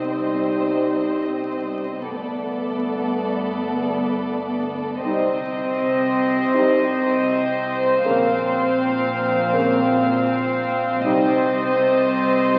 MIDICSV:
0, 0, Header, 1, 9, 480
1, 0, Start_track
1, 0, Tempo, 750000
1, 1303, Time_signature, 4, 2, 24, 8
1, 8056, End_track
2, 0, Start_track
2, 0, Title_t, "Violin section"
2, 0, Program_c, 0, 48
2, 7066, Note_on_c, 0, 84, 58
2, 7068, Note_on_c, 0, 93, 57
2, 8056, Note_off_c, 0, 84, 0
2, 8056, Note_off_c, 0, 93, 0
2, 8056, End_track
3, 0, Start_track
3, 0, Title_t, "Violin section"
3, 0, Program_c, 1, 48
3, 0, Note_on_c, 1, 75, 39
3, 1277, Note_off_c, 1, 75, 0
3, 1306, Note_on_c, 1, 74, 46
3, 3199, Note_off_c, 1, 74, 0
3, 3223, Note_on_c, 1, 75, 59
3, 5118, Note_off_c, 1, 75, 0
3, 5150, Note_on_c, 1, 77, 65
3, 7066, Note_off_c, 1, 77, 0
3, 7066, Note_on_c, 1, 75, 68
3, 8056, Note_off_c, 1, 75, 0
3, 8056, End_track
4, 0, Start_track
4, 0, Title_t, "Violin section"
4, 0, Program_c, 2, 48
4, 0, Note_on_c, 2, 72, 41
4, 1279, Note_off_c, 2, 72, 0
4, 1304, Note_on_c, 2, 69, 49
4, 3198, Note_off_c, 2, 69, 0
4, 3224, Note_on_c, 2, 72, 59
4, 7038, Note_off_c, 2, 72, 0
4, 7072, Note_on_c, 2, 72, 77
4, 8056, Note_off_c, 2, 72, 0
4, 8056, End_track
5, 0, Start_track
5, 0, Title_t, "Viola section"
5, 0, Program_c, 3, 48
5, 0, Note_on_c, 3, 60, 41
5, 1279, Note_off_c, 3, 60, 0
5, 1303, Note_on_c, 3, 59, 48
5, 3198, Note_off_c, 3, 59, 0
5, 3225, Note_on_c, 3, 60, 63
5, 5118, Note_off_c, 3, 60, 0
5, 5138, Note_on_c, 3, 60, 70
5, 7515, Note_off_c, 3, 60, 0
5, 7542, Note_on_c, 3, 60, 64
5, 8056, Note_off_c, 3, 60, 0
5, 8056, End_track
6, 0, Start_track
6, 0, Title_t, "French horn section"
6, 0, Program_c, 4, 60
6, 0, Note_on_c, 4, 55, 44
6, 0, Note_on_c, 4, 63, 46
6, 1191, Note_off_c, 4, 55, 0
6, 1191, Note_off_c, 4, 63, 0
6, 1300, Note_on_c, 4, 59, 55
6, 1305, Note_on_c, 4, 57, 52
6, 3196, Note_off_c, 4, 59, 0
6, 3198, Note_off_c, 4, 57, 0
6, 3224, Note_on_c, 4, 55, 60
6, 3228, Note_on_c, 4, 63, 61
6, 3396, Note_off_c, 4, 55, 0
6, 3398, Note_off_c, 4, 63, 0
6, 4184, Note_on_c, 4, 63, 63
6, 4187, Note_on_c, 4, 55, 62
6, 4355, Note_off_c, 4, 63, 0
6, 4357, Note_off_c, 4, 55, 0
6, 5147, Note_on_c, 4, 49, 70
6, 5149, Note_on_c, 4, 58, 69
6, 5317, Note_off_c, 4, 49, 0
6, 5318, Note_off_c, 4, 58, 0
6, 6098, Note_on_c, 4, 58, 68
6, 6101, Note_on_c, 4, 49, 70
6, 6272, Note_off_c, 4, 58, 0
6, 6274, Note_off_c, 4, 49, 0
6, 7070, Note_on_c, 4, 55, 73
6, 7072, Note_on_c, 4, 63, 71
6, 7239, Note_off_c, 4, 55, 0
6, 7240, Note_off_c, 4, 63, 0
6, 8025, Note_on_c, 4, 55, 57
6, 8026, Note_on_c, 4, 63, 62
6, 8056, Note_off_c, 4, 55, 0
6, 8056, Note_off_c, 4, 63, 0
6, 8056, End_track
7, 0, Start_track
7, 0, Title_t, "Cello section"
7, 0, Program_c, 5, 48
7, 0, Note_on_c, 5, 48, 43
7, 1300, Note_on_c, 5, 43, 52
7, 1303, Note_off_c, 5, 48, 0
7, 3222, Note_off_c, 5, 43, 0
7, 3225, Note_on_c, 5, 48, 67
7, 5118, Note_off_c, 5, 48, 0
7, 5145, Note_on_c, 5, 46, 81
7, 7064, Note_off_c, 5, 46, 0
7, 7070, Note_on_c, 5, 48, 78
7, 8056, Note_off_c, 5, 48, 0
7, 8056, End_track
8, 0, Start_track
8, 0, Title_t, "Double bass section"
8, 0, Program_c, 6, 48
8, 0, Note_on_c, 6, 36, 42
8, 1301, Note_on_c, 6, 31, 50
8, 1303, Note_off_c, 6, 36, 0
8, 3222, Note_off_c, 6, 31, 0
8, 3226, Note_on_c, 6, 36, 68
8, 5119, Note_off_c, 6, 36, 0
8, 5145, Note_on_c, 6, 34, 78
8, 7062, Note_on_c, 6, 36, 77
8, 7064, Note_off_c, 6, 34, 0
8, 8056, Note_off_c, 6, 36, 0
8, 8056, End_track
9, 0, Start_track
9, 0, Title_t, "Synth drone"
9, 0, Program_c, 7, 95
9, 0, Note_on_c, 7, 36, 60
9, 1302, Note_off_c, 7, 36, 0
9, 1302, Note_on_c, 7, 31, 64
9, 3222, Note_off_c, 7, 31, 0
9, 3224, Note_on_c, 7, 36, 73
9, 5144, Note_off_c, 7, 36, 0
9, 5154, Note_on_c, 7, 34, 77
9, 7068, Note_off_c, 7, 34, 0
9, 7071, Note_on_c, 7, 36, 74
9, 8056, Note_off_c, 7, 36, 0
9, 8056, End_track
0, 0, End_of_file